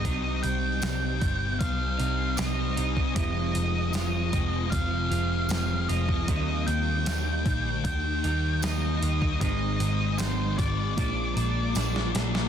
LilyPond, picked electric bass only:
\new Staff \with { instrumentName = "Picked electric bass" } { \clef bass \time 4/4 \key c \minor \tempo 4 = 77 c,8 c,8 c,8 g,,8 c,8 c,8 c,8 c,8 | f,,8 f,,8 f,,8 f,,8 f,,8 f,,8 f,,8 f,,8 | ees,8 ees,8 ees,8 bes,,8 ees,8 ees,8 ees,8 ees,8 | aes,,8 aes,,8 aes,,8 aes,,8 bes,,8 bes,,8 bes,,8 bes,,8 | }